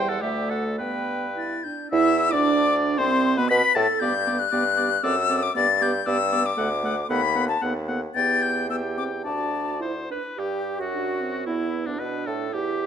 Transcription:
0.00 0.24 E2 loud
0.00 0.24 G3 medium
0.00 0.11 G5 loud
0.08 0.23 A4 medium
0.08 0.22 F#5 loud
0.21 0.81 D2 medium
0.21 0.81 A3 medium
0.21 0.51 G4 medium
0.21 0.75 D5 medium
0.21 0.50 E5 medium
0.50 0.78 A4 medium
0.50 0.64 F#5 medium
0.78 1.65 G2 medium
0.78 1.31 B3 medium
0.78 1.62 B4 medium
0.78 1.36 B4 medium
0.78 1.63 G5 loud
1.36 1.67 E4 medium
1.36 1.65 A6 medium
1.64 1.92 D4 medium
1.64 1.90 G6 medium
1.91 2.29 E2 loud
1.91 2.29 E4 loud
1.91 2.30 E4 loud
1.91 2.34 E5 loud
1.91 2.32 E6 loud
2.31 2.97 D2 loud
2.31 3.00 D4 loud
2.31 2.97 D4 loud
2.31 2.99 D5 loud
2.31 2.75 D6 loud
2.98 3.39 C2 loud
2.98 3.37 C4 loud
2.98 3.39 C5 loud
2.98 3.36 C6 loud
3.37 3.50 B2 medium
3.37 3.43 B3 medium
3.37 3.52 B3 loud
3.37 3.50 B4 loud
3.37 3.50 B5 loud
3.49 3.62 B2 loud
3.49 3.62 B4 loud
3.49 3.76 B4 loud
3.49 3.74 B5 loud
3.49 3.77 B6 loud
3.75 3.87 A2 loud
3.75 3.87 A4 loud
3.75 4.01 A4 loud
3.75 3.86 A5 loud
3.75 4.01 A6 loud
4.00 4.47 G2 loud
4.00 4.13 B3 medium
4.00 4.13 G4 medium
4.00 4.13 D5 loud
4.00 4.40 G6 loud
4.26 4.39 B3 medium
4.26 4.39 G4 medium
4.26 4.38 D5 medium
4.39 5.05 F#6 loud
4.51 4.98 G2 loud
4.51 4.64 B3 medium
4.51 4.64 G4 medium
4.51 4.63 D5 medium
4.76 4.90 B3 medium
4.76 4.90 G4 medium
4.76 4.89 D5 medium
5.03 5.50 F#2 loud
5.03 5.15 C4 medium
5.03 5.15 A4 medium
5.03 5.15 D5 loud
5.03 5.44 E6 loud
5.29 5.41 C4 medium
5.29 5.41 A4 medium
5.29 5.42 D5 medium
5.43 5.55 D6 loud
5.55 6.01 G2 loud
5.55 5.67 B3 medium
5.55 5.67 G4 medium
5.55 5.67 D5 medium
5.55 5.84 A6 loud
5.81 5.93 B3 medium
5.81 5.93 G4 medium
5.81 5.92 D5 medium
5.81 6.08 G6 loud
6.06 6.52 G2 loud
6.06 6.18 B3 medium
6.06 6.18 G4 medium
6.06 6.17 D5 loud
6.06 6.47 E6 loud
6.32 6.44 B3 medium
6.32 6.44 G4 medium
6.32 6.43 D5 medium
6.46 7.10 D6 loud
6.57 7.04 D2 loud
6.57 6.69 A3 medium
6.57 6.69 A4 medium
6.57 6.69 F#5 medium
6.83 6.95 A3 medium
6.83 6.95 A4 medium
6.83 6.96 F#5 medium
7.09 7.56 D#2 loud
7.09 7.21 B3 medium
7.09 7.22 A4 loud
7.09 7.21 F#5 medium
7.09 7.48 B5 loud
7.35 7.47 B3 medium
7.35 7.48 A4 medium
7.35 7.47 F#5 medium
7.48 7.61 A5 loud
7.61 8.09 D#2 medium
7.61 7.74 B3 medium
7.61 7.74 A4 medium
7.61 7.73 F#5 medium
7.88 8.00 B3 medium
7.88 8.01 A4 medium
7.88 8.00 F#5 medium
8.15 9.21 E2 medium
8.15 8.66 B3 medium
8.15 8.66 G4 medium
8.15 8.66 G5 medium
8.15 8.44 A6 loud
8.42 8.69 G6 loud
8.69 8.82 B3 medium
8.69 9.27 G4 medium
8.69 9.23 G5 medium
8.69 8.76 E6 loud
8.97 9.10 C4 medium
8.97 9.04 D6 loud
9.24 10.09 D2 medium
9.24 9.75 D4 medium
9.24 9.82 F#4 medium
9.24 9.80 D5 medium
9.24 9.80 A5 medium
9.81 9.94 E4 medium
9.81 10.08 C5 medium
9.81 9.95 C5 medium
10.10 10.23 D4 medium
10.10 10.23 B4 medium
10.10 10.40 B4 medium
10.37 10.77 G2 medium
10.37 10.80 G4 medium
10.37 10.82 G4 medium
10.37 10.80 G4 medium
10.79 11.45 F#2 medium
10.79 11.48 F#4 medium
10.79 11.45 F#4 medium
10.93 11.22 D4 medium
11.20 11.47 C4 medium
11.45 11.86 E2 medium
11.45 11.98 B3 medium
11.45 11.84 E4 medium
11.45 11.88 E4 medium
11.85 12.01 D2 medium
11.85 11.99 D4 medium
11.85 12.01 D4 medium
11.99 12.27 B2 medium
11.99 12.52 D4 medium
11.99 12.28 B4 medium
11.99 12.06 B4 medium
11.99 12.26 B4 loud
12.26 12.53 A2 medium
12.26 12.55 A4 medium
12.26 12.53 A4 medium
12.26 12.34 A4 medium
12.52 12.87 E2 medium
12.52 12.87 E4 medium
12.52 12.87 G4 medium
12.52 12.87 E5 medium

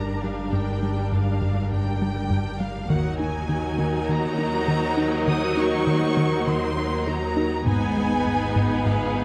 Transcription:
0.00 2.90 G1 medium
0.00 0.12 G2 medium
0.00 2.86 G2 soft
0.00 2.86 G3 soft
0.00 2.86 D4 soft
0.00 2.86 A#4 soft
0.00 0.23 A#5 medium
0.23 0.41 G3 soft
0.23 0.53 F5 medium
0.53 0.70 G2 medium
0.53 1.12 G5 medium
0.83 1.00 G3 soft
1.12 1.30 G2 medium
1.12 1.71 F5 medium
1.42 1.60 G2 medium
1.71 1.90 G2 soft
1.71 2.59 G5 medium
2.02 2.19 G3 soft
2.30 2.48 G2 medium
2.60 2.78 G3 medium
2.60 2.90 F5 medium
2.89 3.45 D#2 soft
2.89 7.67 D#2 medium
2.89 7.63 D#2 soft
2.89 3.08 D#3 medium
2.89 7.62 F#3 medium
2.89 7.62 D#4 medium
2.89 7.63 F#4 soft
2.89 7.63 A#4 medium
2.89 3.20 F#5 medium
3.19 3.37 D#4 soft
3.19 4.07 G#5 medium
3.49 3.67 D#3 medium
3.79 3.97 D#3 medium
4.09 4.27 D#3 soft
4.09 5.27 A#5 medium
4.38 4.56 D#4 medium
4.68 4.86 D#3 medium
4.97 5.15 D#4 medium
5.28 5.46 D#3 medium
5.28 5.57 D#6 medium
5.57 5.75 D#4 medium
5.57 6.47 C#6 medium
5.87 6.05 D#3 medium
6.17 6.35 D#3 medium
6.47 6.65 D#3 medium
6.47 7.07 C6 medium
6.77 6.95 D#4 soft
7.07 7.25 D#3 medium
7.07 7.67 A#5 medium
7.37 7.55 D#4 medium
7.66 8.22 G#1 soft
7.66 9.24 G#1 medium
7.66 9.24 G#2 medium
7.66 7.85 G#2 medium
7.66 9.24 B3 medium
7.66 9.24 D#4 medium
7.66 9.24 G#4 medium
7.66 9.24 B4 soft
7.66 8.83 G#5 medium
7.97 8.14 G#3 soft
8.26 8.44 G#2 soft
8.56 8.74 G#2 medium
8.86 9.04 G#2 soft
8.86 9.24 F5 medium
9.16 9.24 G#3 soft

